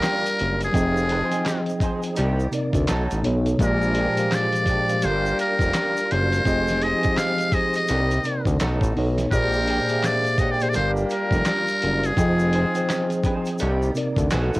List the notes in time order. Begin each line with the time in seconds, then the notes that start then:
Already playing: G3 A#3 D4 F4 G4 A#4 D5 F5
0.02 A#3 F4 G4, finger snap, snare, clap, closed hi-hat, shaker
0.26 closed hi-hat, shaker
0.39 F#1, closed hi-hat
0.61 G#4, closed hi-hat, shaker
0.72 F1 F3 G#3 C4 D#4 F4 G#4 D#5 G5, kick, closed hi-hat, shaker
0.97 shaker
1.09 D4 G4 B4, closed hi-hat
1.25 D#4 G#4 C5
1.31 F3 C4 G#4 D#5 G5, closed hi-hat, shaker
1.46 finger snap, muted clean electric guitar stroke, snare, clap, closed hi-hat, shaker
1.66 closed hi-hat, shaker
1.80 D#4 G#4 C5, kick, closed hi-hat, shaker
2.03 closed hi-hat, shaker
2.16 C2 C3 G3 A#3 D#4 G4 A#4 D5, closed hi-hat, shaker
2.40 shaker
2.51 C3 C4 D#4 A#4 D5, closed hi-hat, shaker
2.73 D2, kick, closed hi-hat, shaker
2.87 B1 A3 B3 D#4 F#4 A4, finger snap, snare, clap, closed hi-hat, shaker
2.92 A4 C#5
3.11 A1, closed hi-hat, shaker
3.22 B2 B3 D#4 A4 C#5, closed hi-hat
3.26 B1
3.46 closed hi-hat, shaker
3.57 A#1 A#2 F3 G#3 A#3 D4 F4 G4 C5 D5, kick, closed hi-hat
3.62 A#4, shaker
3.82 shaker
3.95 G#3 D4 G4, closed hi-hat
4.16 A#2 F3 G#3 G4 C5 F5, closed hi-hat, shaker
4.32 D5, finger snap, snare, clap, closed hi-hat, shaker
4.53 closed hi-hat, shaker
4.66 G#3 D4 G4, kick, closed hi-hat, shaker
4.87 A#2 F3 G#3 G4 C5 F5, closed hi-hat, shaker
5.01 G1 G3 A#3 D4 F4 G4 A4 A#4 C5 D5 F5, closed hi-hat, shaker
5.09 A#4
5.26 shaker
5.39 A#4, closed hi-hat, shaker
5.59 F1, kick, closed hi-hat, shaker
5.73 D4 F4 A#4, finger snap, snare, clap, closed hi-hat, shaker
5.97 closed hi-hat, shaker
6.11 F#1 C5, closed hi-hat
6.32 closed hi-hat, shaker
6.44 F1 F3 G#3 C4 D#4 F4 G4 G#4 D#5, kick, closed hi-hat, shaker
6.67 snare, closed hi-hat, shaker
6.81 D#4 G#4 C5 D#5, closed hi-hat
7.02 C2 F3 C4 G4 G#4 D#5, kick, closed hi-hat, shaker
7.17 F5, finger snap, snare, clap, closed hi-hat, shaker
7.38 closed hi-hat, shaker
7.52 D#4 G#4 C5 D#5, kick, closed hi-hat, shaker
7.73 D#5, closed hi-hat, shaker
7.88 C2 C3 G3 A#3 C4 D#4 G4 A#4 D5, closed hi-hat, shaker
8.11 closed hi-hat, shaker
8.24 C3 C4 D#4 A#4 D5, closed hi-hat, shaker
8.45 D2, kick, closed hi-hat, shaker
8.59 B1 A3 B3 D#4 F#4 A4 C#5, finger snap, snare, clap, closed hi-hat, shaker
8.81 A1, kick, closed hi-hat, shaker
8.95 B1 B2 B3 D#4 A4 C#5, open hi-hat
9.18 snare, closed hi-hat, shaker
9.30 A#1 A#2 G#3 A#3 C4 D4 G4 G#4 A#4 G5, kick, closed hi-hat, shaker
9.34 C5 D5
9.53 shaker
9.67 G#4 D5 G5, closed hi-hat
9.88 A#2 A#3 G4 G#4 C5 E5, closed hi-hat, shaker
9.98 F5
10.03 D5, finger snap, snare, clap, closed hi-hat, shaker
10.24 closed hi-hat, shaker
10.38 G#4 D5 D#5, kick, closed hi-hat, shaker
10.42 G5
10.51 D5
10.59 A#2 A#3 G4 G#4 C5 D5, closed hi-hat, shaker
10.69 G3 A#4 D5
10.73 G1 G3 A#3 D4 F4 G4 A#4 C5 D5, closed hi-hat, shaker
10.77 F5
10.97 shaker
11.10 A#4, closed hi-hat, shaker
11.31 F1 D5, kick, closed hi-hat, shaker
11.35 F4 A#4
11.45 F4 A#4 D5, finger snap, snare, clap, closed hi-hat, shaker
11.68 closed hi-hat, shaker
11.82 F#1, closed hi-hat
12.04 G#4, closed hi-hat, shaker
12.16 F1 F3 G#3 C4 D#4 F4 G#4 D#5 G5, kick, closed hi-hat, shaker
12.39 shaker
12.53 D#4 G#4 C5, closed hi-hat
12.74 F3 C4 G#4 C5 G5, closed hi-hat, shaker
12.89 finger snap, muted clean electric guitar stroke, snare, clap, closed hi-hat, shaker
13.10 closed hi-hat, shaker
13.24 D#4 G#4 C5, kick, closed hi-hat, shaker
13.45 closed hi-hat, shaker
13.58 C2 C3 G3 A#3 D#4 G4 A#4 D5, closed hi-hat, shaker
13.82 shaker
13.94 C3 C4 D#4 A#4 D5, closed hi-hat, shaker
14.17 D2, kick, closed hi-hat, shaker
14.30 B1 A3 B3 C#4 D#4 F#4 A4 C#5, finger snap, snare, clap, closed hi-hat, shaker
14.54 A1, closed hi-hat, shaker